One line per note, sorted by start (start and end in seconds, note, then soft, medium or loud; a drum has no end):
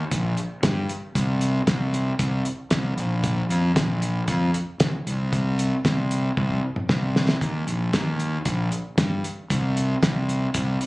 0.11 0.33 A#1 medium
0.11 kick medium
0.11 closed hi-hat medium
0.37 closed hi-hat soft
0.63 0.85 G2 medium
0.63 kick loud
0.63 snare loud
0.63 closed hi-hat medium
0.89 closed hi-hat medium
1.15 1.58 C2 medium
1.15 kick loud
1.15 closed hi-hat medium
1.41 closed hi-hat medium
1.67 2.10 C2 medium
1.67 kick medium
1.67 snare medium
1.67 closed hi-hat medium
1.94 closed hi-hat medium
2.19 2.41 C2 medium
2.19 kick medium
2.19 closed hi-hat medium
2.45 closed hi-hat medium
2.71 2.93 C2 loud
2.71 kick medium
2.71 snare medium
2.71 closed hi-hat medium
2.97 3.40 A#1 medium
2.97 closed hi-hat medium
3.24 kick medium
3.24 closed hi-hat medium
3.49 3.71 F2 medium
3.49 closed hi-hat medium
3.76 4.19 A#1 medium
3.76 kick loud
3.76 snare loud
3.76 closed hi-hat medium
4.02 closed hi-hat medium
4.28 4.50 F2 medium
4.28 kick medium
4.28 closed hi-hat medium
4.54 closed hi-hat medium
4.80 4.91 C#2 medium
4.80 kick medium
4.80 snare loud
4.80 closed hi-hat medium
5.06 5.71 C2 loud
5.06 closed hi-hat medium
5.33 kick medium
5.33 closed hi-hat medium
5.59 closed hi-hat medium
5.85 6.28 C2 medium
5.85 kick medium
5.85 snare medium
5.85 closed hi-hat medium
6.11 closed hi-hat medium
6.37 6.58 C2 medium
6.37 kick medium
6.50 kick soft
6.76 mid tom medium
6.89 7.32 C2 medium
6.89 kick medium
6.89 snare medium
7.16 snare medium
7.29 snare medium
7.41 7.63 D#2 medium
7.41 kick medium
7.41 closed hi-hat medium
7.67 7.89 A#1 medium
7.67 closed hi-hat medium
7.93 8.37 D#2 medium
7.93 kick medium
7.93 snare medium
7.93 closed hi-hat medium
8.20 closed hi-hat medium
8.45 8.67 A#1 medium
8.45 kick loud
8.45 closed hi-hat medium
8.72 closed hi-hat soft
8.98 9.19 G2 medium
8.98 kick loud
8.98 snare medium
8.98 closed hi-hat medium
9.24 closed hi-hat medium
9.50 9.94 C2 medium
9.50 kick loud
9.50 closed hi-hat medium
9.77 closed hi-hat medium
10.03 10.46 C2 medium
10.03 kick loud
10.03 snare medium
10.03 closed hi-hat medium
10.29 closed hi-hat medium
10.54 10.76 C2 loud
10.54 kick loud
10.54 closed hi-hat medium
10.81 closed hi-hat medium